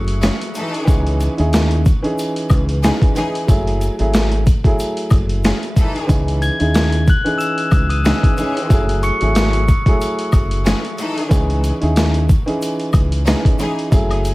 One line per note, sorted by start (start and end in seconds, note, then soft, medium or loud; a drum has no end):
0.00 0.29 F#1 medium
0.00 0.77 F#3 medium
0.00 0.77 A3 medium
0.00 0.78 E4 medium
0.00 0.78 G#4 loud
0.00 0.84 C#6 medium
0.00 0.84 C#7 medium
0.08 closed hi-hat medium
0.22 0.38 E3 loud
0.22 0.38 C#4 loud
0.22 0.38 G#4 loud
0.22 snare loud
0.22 closed hi-hat loud
0.22 shaker medium
0.41 closed hi-hat medium
0.55 0.98 E3 loud
0.55 0.98 D#4 loud
0.55 0.98 A4 loud
0.55 closed hi-hat medium
0.55 shaker medium
0.74 closed hi-hat medium
0.85 1.27 C#2 loud
0.85 1.33 E3 loud
0.85 1.33 C#4 medium
0.85 1.34 D#4 medium
0.85 1.34 G#4 loud
0.85 kick loud
0.85 closed hi-hat loud
0.85 shaker medium
1.07 closed hi-hat medium
1.20 closed hi-hat medium
1.20 shaker medium
1.37 1.89 D#2 medium
1.37 1.82 C#4 medium
1.37 1.82 D#4 medium
1.37 1.81 E4 medium
1.37 1.83 G#4 loud
1.37 closed hi-hat medium
1.53 snare loud
1.53 closed hi-hat medium
1.53 shaker medium
1.71 closed hi-hat medium
1.85 kick loud
1.85 closed hi-hat medium
1.85 shaker medium
2.02 2.77 E3 medium
2.02 2.77 C#4 medium
2.02 2.78 D#4 medium
2.02 2.78 G#4 loud
2.02 closed hi-hat soft
2.18 closed hi-hat medium
2.18 shaker medium
2.36 closed hi-hat medium
2.50 2.90 C#2 loud
2.50 kick loud
2.50 closed hi-hat medium
2.50 high woodblock medium
2.50 shaker medium
2.69 closed hi-hat medium
2.83 2.99 E3 loud
2.83 3.14 E3 medium
2.83 3.14 C#4 medium
2.83 2.99 D#4 loud
2.83 3.15 D#4 medium
2.83 2.99 G#4 loud
2.83 3.15 G#4 medium
2.83 snare loud
2.83 closed hi-hat loud
2.83 shaker medium
3.02 kick loud
3.02 closed hi-hat medium
3.15 3.46 E3 medium
3.15 3.44 E3 medium
3.15 3.46 C#4 medium
3.15 3.44 D#4 medium
3.15 3.47 D#4 medium
3.15 3.44 G#4 loud
3.15 3.47 G#4 medium
3.15 closed hi-hat medium
3.15 shaker soft
3.35 closed hi-hat medium
3.47 3.88 F#1 loud
3.47 3.94 F#3 loud
3.47 3.95 A3 medium
3.47 3.95 E4 medium
3.47 3.95 G#4 loud
3.47 kick loud
3.47 closed hi-hat loud
3.47 shaker medium
3.67 closed hi-hat medium
3.81 closed hi-hat medium
3.81 shaker medium
3.98 4.50 G#1 medium
3.98 4.42 F#3 loud
3.98 4.43 A3 medium
3.98 4.43 E4 medium
3.98 4.44 G#4 loud
3.98 closed hi-hat medium
4.14 snare loud
4.14 closed hi-hat medium
4.14 shaker medium
4.32 closed hi-hat medium
4.46 kick loud
4.46 closed hi-hat medium
4.46 shaker medium
4.64 5.99 F#3 medium
4.64 5.99 A3 medium
4.64 6.00 E4 medium
4.64 6.00 G#4 loud
4.64 kick medium
4.64 closed hi-hat soft
4.79 closed hi-hat medium
4.79 shaker medium
4.97 closed hi-hat medium
5.10 5.51 F#1 medium
5.10 kick loud
5.10 closed hi-hat medium
5.10 high woodblock medium
5.10 shaker medium
5.29 closed hi-hat medium
5.44 5.60 E3 medium
5.44 5.60 C#4 medium
5.44 5.60 G#4 loud
5.44 snare loud
5.44 closed hi-hat loud
5.44 shaker medium
5.63 closed hi-hat medium
5.76 6.20 E3 loud
5.76 6.21 D#4 loud
5.76 6.21 A4 loud
5.76 kick medium
5.76 closed hi-hat medium
5.76 shaker medium
5.96 closed hi-hat medium
6.07 6.49 C#2 loud
6.07 6.55 E3 loud
6.07 6.55 C#4 medium
6.07 6.55 D#4 medium
6.07 6.56 G#4 loud
6.07 kick loud
6.07 closed hi-hat loud
6.07 shaker medium
6.28 closed hi-hat medium
6.42 6.71 G#6 medium
6.42 6.72 G#7 medium
6.42 closed hi-hat medium
6.42 shaker medium
6.59 7.11 D#2 medium
6.59 7.04 C#4 medium
6.59 7.04 D#4 medium
6.59 7.03 E4 medium
6.59 7.04 G#4 loud
6.59 closed hi-hat medium
6.74 snare loud
6.74 closed hi-hat medium
6.74 shaker medium
6.92 closed hi-hat medium
7.07 7.25 F#6 medium
7.07 7.25 F#7 medium
7.07 kick loud
7.07 closed hi-hat medium
7.07 shaker medium
7.24 7.99 E3 medium
7.24 7.99 C#4 medium
7.24 7.99 D#4 medium
7.24 8.00 G#4 loud
7.24 closed hi-hat soft
7.38 7.87 E6 medium
7.38 7.87 E7 medium
7.38 closed hi-hat medium
7.38 shaker medium
7.58 closed hi-hat medium
7.71 8.11 C#2 loud
7.71 kick loud
7.71 closed hi-hat medium
7.71 high woodblock medium
7.71 shaker medium
7.90 8.19 D#6 medium
7.90 8.20 D#7 medium
7.90 closed hi-hat medium
8.05 8.20 E3 loud
8.05 8.36 E3 medium
8.05 8.36 C#4 medium
8.05 8.20 D#4 medium
8.05 8.36 D#4 medium
8.05 8.20 G#4 loud
8.05 8.37 G#4 medium
8.05 snare loud
8.05 closed hi-hat loud
8.05 shaker medium
8.23 kick loud
8.23 closed hi-hat medium
8.37 8.68 E3 medium
8.37 8.81 E3 loud
8.37 8.81 C#4 loud
8.37 8.68 C#4 medium
8.37 8.68 D#4 medium
8.37 8.81 G#4 loud
8.37 8.69 G#4 medium
8.37 closed hi-hat medium
8.37 shaker medium
8.57 closed hi-hat medium
8.69 9.10 F#1 loud
8.69 9.16 F#3 loud
8.69 9.16 A3 medium
8.69 9.17 E4 medium
8.69 9.17 G#4 loud
8.69 kick loud
8.69 closed hi-hat loud
8.69 shaker medium
8.89 closed hi-hat medium
9.03 11.27 C#6 medium
9.03 11.28 C#7 medium
9.03 closed hi-hat medium
9.03 shaker medium
9.20 9.72 G#1 medium
9.20 9.64 F#3 loud
9.20 9.65 A3 medium
9.20 9.65 E4 medium
9.20 9.65 G#4 loud
9.20 closed hi-hat medium
9.35 snare loud
9.35 closed hi-hat medium
9.35 shaker medium
9.53 closed hi-hat medium
9.68 kick loud
9.68 closed hi-hat medium
9.68 shaker medium
9.86 11.21 F#3 loud
9.86 11.21 A3 medium
9.86 11.21 E4 medium
9.86 11.22 G#4 loud
9.86 kick medium
9.86 closed hi-hat medium
10.01 closed hi-hat medium
10.01 shaker medium
10.19 closed hi-hat medium
10.32 10.72 F#1 medium
10.32 kick loud
10.32 closed hi-hat medium
10.32 high woodblock medium
10.32 shaker medium
10.51 closed hi-hat medium
10.66 10.81 E3 loud
10.66 10.81 C#4 loud
10.66 10.81 G#4 loud
10.66 snare loud
10.66 closed hi-hat loud
10.66 shaker medium
10.85 closed hi-hat medium
10.98 11.42 E3 loud
10.98 11.42 D#4 loud
10.98 11.42 A4 loud
10.98 closed hi-hat medium
10.98 shaker medium
11.18 closed hi-hat medium
11.29 11.70 C#2 loud
11.29 11.76 E3 loud
11.29 11.77 C#4 medium
11.29 11.77 D#4 medium
11.29 11.78 G#4 loud
11.29 kick loud
11.29 closed hi-hat loud
11.29 shaker medium
11.50 closed hi-hat medium
11.64 closed hi-hat medium
11.64 shaker medium
11.81 12.32 D#2 medium
11.81 12.25 C#4 medium
11.81 12.26 D#4 medium
11.81 12.25 E4 medium
11.81 12.26 G#4 loud
11.81 closed hi-hat medium
11.96 snare loud
11.96 closed hi-hat medium
11.96 shaker medium
12.14 closed hi-hat medium
12.29 kick loud
12.29 closed hi-hat medium
12.29 shaker medium
12.46 13.20 E3 medium
12.46 13.21 C#4 medium
12.46 13.21 D#4 medium
12.46 13.21 G#4 loud
12.46 closed hi-hat soft
12.62 closed hi-hat medium
12.62 shaker medium
12.80 closed hi-hat medium
12.93 13.33 C#2 loud
12.93 kick loud
12.93 closed hi-hat medium
12.93 high woodblock medium
12.93 shaker medium
13.12 closed hi-hat medium
13.26 13.42 E3 loud
13.26 13.57 E3 medium
13.26 13.58 C#4 medium
13.26 13.42 D#4 loud
13.26 13.58 D#4 medium
13.26 13.42 G#4 loud
13.26 13.58 G#4 medium
13.26 snare loud
13.26 closed hi-hat loud
13.26 shaker medium
13.45 kick loud
13.45 closed hi-hat medium
13.59 13.89 E3 medium
13.59 13.87 E3 medium
13.59 13.90 C#4 medium
13.59 13.87 D#4 medium
13.59 13.90 D#4 medium
13.59 13.87 G#4 loud
13.59 13.91 G#4 medium
13.59 closed hi-hat medium
13.59 shaker medium
13.79 closed hi-hat medium
13.91 14.31 F#1 loud
13.91 14.34 F#3 loud
13.91 14.34 A3 medium
13.91 14.34 E4 medium
13.91 14.34 G#4 loud
13.91 kick loud
13.91 closed hi-hat loud
13.91 shaker medium
14.11 closed hi-hat medium
14.11 high woodblock medium
14.25 closed hi-hat medium
14.25 shaker medium